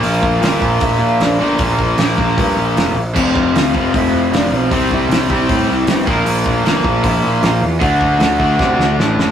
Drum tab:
CC |--------|--------|x-------|--------|
HH |o-o-o-o-|o-o-o-o-|--o-o-o-|o-o-o-o-|
SD |--o---o-|--o---o-|--o---o-|--o---o-|
BD |-o-oo---|oo-oo---|oo-oo---|oo-oo--o|

CC |--------|--------|
HH |o-o-o-o-|o-o-----|
SD |--o---o-|--o-oooo|
BD |-o-oo---|oo-oo---|